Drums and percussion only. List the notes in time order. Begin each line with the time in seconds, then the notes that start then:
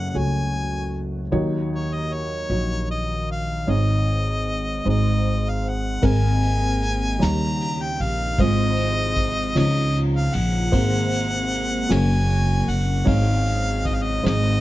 6.02 kick, ride
6.42 ride
6.82 ride
7.22 snare, ride
7.61 ride
8.00 ride
8.39 kick, ride
8.77 ride
9.16 kick, ride
9.56 snare, ride
9.95 ride
10.33 ride
10.73 kick, ride
11.12 ride
11.51 ride
11.90 snare, ride
12.30 ride
12.69 ride
13.07 kick, ride
13.46 ride
13.85 kick, ride
14.25 snare, ride